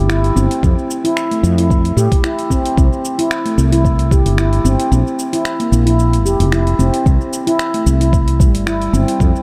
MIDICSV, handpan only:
0, 0, Header, 1, 2, 480
1, 0, Start_track
1, 0, Tempo, 535714
1, 565, Time_signature, 4, 2, 24, 8
1, 8444, End_track
2, 0, Start_track
2, 0, Title_t, "Handpan"
2, 0, Program_c, 0, 114
2, 79, Note_on_c, 0, 64, 105
2, 311, Note_off_c, 0, 64, 0
2, 320, Note_on_c, 0, 60, 98
2, 448, Note_off_c, 0, 60, 0
2, 562, Note_on_c, 0, 60, 77
2, 688, Note_off_c, 0, 60, 0
2, 936, Note_on_c, 0, 64, 103
2, 1040, Note_off_c, 0, 64, 0
2, 1177, Note_on_c, 0, 57, 76
2, 1239, Note_off_c, 0, 57, 0
2, 1416, Note_on_c, 0, 64, 91
2, 1520, Note_off_c, 0, 64, 0
2, 1765, Note_on_c, 0, 67, 79
2, 1994, Note_off_c, 0, 67, 0
2, 2004, Note_on_c, 0, 64, 98
2, 2234, Note_off_c, 0, 64, 0
2, 2242, Note_on_c, 0, 60, 102
2, 2368, Note_off_c, 0, 60, 0
2, 2482, Note_on_c, 0, 60, 78
2, 2609, Note_off_c, 0, 60, 0
2, 2856, Note_on_c, 0, 64, 105
2, 2959, Note_off_c, 0, 64, 0
2, 3096, Note_on_c, 0, 57, 76
2, 3158, Note_off_c, 0, 57, 0
2, 3336, Note_on_c, 0, 64, 98
2, 3440, Note_off_c, 0, 64, 0
2, 3684, Note_on_c, 0, 67, 82
2, 3914, Note_off_c, 0, 67, 0
2, 3925, Note_on_c, 0, 64, 102
2, 4154, Note_off_c, 0, 64, 0
2, 4162, Note_on_c, 0, 60, 103
2, 4289, Note_off_c, 0, 60, 0
2, 4404, Note_on_c, 0, 60, 84
2, 4530, Note_off_c, 0, 60, 0
2, 4776, Note_on_c, 0, 64, 104
2, 4880, Note_off_c, 0, 64, 0
2, 5015, Note_on_c, 0, 58, 78
2, 5078, Note_off_c, 0, 58, 0
2, 5251, Note_on_c, 0, 64, 91
2, 5357, Note_off_c, 0, 64, 0
2, 5605, Note_on_c, 0, 67, 75
2, 5834, Note_off_c, 0, 67, 0
2, 5845, Note_on_c, 0, 64, 103
2, 6074, Note_off_c, 0, 64, 0
2, 6085, Note_on_c, 0, 60, 95
2, 6210, Note_off_c, 0, 60, 0
2, 6322, Note_on_c, 0, 60, 75
2, 6449, Note_off_c, 0, 60, 0
2, 6693, Note_on_c, 0, 64, 109
2, 6798, Note_off_c, 0, 64, 0
2, 6936, Note_on_c, 0, 57, 75
2, 6998, Note_off_c, 0, 57, 0
2, 7174, Note_on_c, 0, 64, 96
2, 7279, Note_off_c, 0, 64, 0
2, 7523, Note_on_c, 0, 55, 78
2, 7599, Note_off_c, 0, 55, 0
2, 7764, Note_on_c, 0, 64, 99
2, 7994, Note_off_c, 0, 64, 0
2, 8006, Note_on_c, 0, 60, 100
2, 8130, Note_off_c, 0, 60, 0
2, 8444, End_track
0, 0, End_of_file